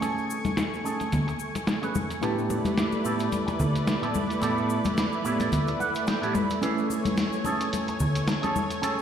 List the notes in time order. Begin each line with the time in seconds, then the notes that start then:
Already playing: A3 C#4 E4 B4 G#5 C#6
0.01 C#4 G#4 A4, closed hi-hat, muted conga, cabasa
0.18 cabasa
0.30 cabasa
0.45 closed hi-hat, high conga, cabasa
0.57 snare, closed hi-hat, muted conga, cabasa
0.72 muted clean electric guitar stroke, cabasa
0.84 C#4 G#4 A4, cabasa
1.00 closed hi-hat, muted conga, cabasa
1.12 closed hi-hat, high conga, low conga, cabasa
1.27 muted clean electric guitar stroke, closed hi-hat, cabasa
1.39 muted clean electric guitar stroke, cabasa
1.54 muted clean electric guitar stroke, closed hi-hat, muted conga, cabasa
1.67 muted clean electric guitar stroke, snare, closed hi-hat, cabasa
1.82 C#4 G#4 B4, closed hi-hat, cabasa
1.95 muted conga, high conga, cabasa
2.09 muted clean electric guitar stroke, closed hi-hat, cabasa
2.21 A2 A3 B3 D4 E4 G4 A4 B4 D5, closed hi-hat, cabasa
2.38 cabasa
2.50 muted conga, cabasa
2.65 closed hi-hat, high conga, cabasa
2.78 snare, closed hi-hat, cabasa
2.92 muted clean electric guitar stroke, muted conga, cabasa
3.04 A2 B3 E4 G4 A4, cabasa
3.19 closed hi-hat, cabasa
3.32 closed hi-hat, high conga, cabasa
3.47 muted clean electric guitar stroke, closed hi-hat, muted conga, cabasa
3.59 muted clean electric guitar stroke, low conga, cabasa
3.74 muted clean electric guitar stroke, closed hi-hat, cabasa
3.86 muted clean electric guitar stroke, snare, closed hi-hat, muted conga, cabasa
4.01 A2 B3 E4 G4 A4, closed hi-hat, cabasa
4.14 high conga, cabasa
4.29 muted clean electric guitar stroke, closed hi-hat, cabasa
4.41 A2 B3 E4 G4 A4, closed hi-hat, muted conga, cabasa
4.58 cabasa
4.70 cabasa
4.85 closed hi-hat, muted conga, high conga, cabasa
4.97 snare, closed hi-hat, cabasa
5.12 muted clean electric guitar stroke, cabasa
5.24 A2 B3 E4 G4 A4 C#5, cabasa
5.40 D5, closed hi-hat, muted conga, cabasa
5.52 E5, closed hi-hat, high conga, low conga, cabasa
5.67 muted clean electric guitar stroke, closed hi-hat, cabasa
5.79 F#5, muted clean electric guitar stroke, muted conga, cabasa
5.94 muted clean electric guitar stroke, closed hi-hat, cabasa
6.06 G5, muted clean electric guitar stroke, snare, closed hi-hat, cabasa
6.21 A2 B3 E4 G4 A4, closed hi-hat, cabasa
6.35 B5, muted conga, high conga, cabasa
6.49 muted clean electric guitar stroke, closed hi-hat, cabasa
6.61 A3 C#4 E4 G#4 A4 B4 C#5 G#5, closed hi-hat, cabasa
6.78 cabasa
6.90 muted conga, cabasa
7.05 closed hi-hat, high conga, cabasa
7.17 snare, closed hi-hat, cabasa
7.32 muted clean electric guitar stroke, cabasa
7.44 C#4 G#4 A4, muted conga, cabasa
7.61 closed hi-hat, cabasa
7.73 closed hi-hat, high conga, cabasa
7.87 muted clean electric guitar stroke, closed hi-hat, muted conga, cabasa
8.00 muted clean electric guitar stroke, low conga, cabasa
8.15 muted clean electric guitar stroke, closed hi-hat, cabasa
8.26 muted clean electric guitar stroke, snare, closed hi-hat, cabasa
8.42 C#4 G#4 A4, closed hi-hat, muted conga, cabasa
8.56 high conga, cabasa
8.70 muted clean electric guitar stroke, closed hi-hat, cabasa
8.82 C#4 G#4 A4, closed hi-hat, muted conga, cabasa
8.98 cabasa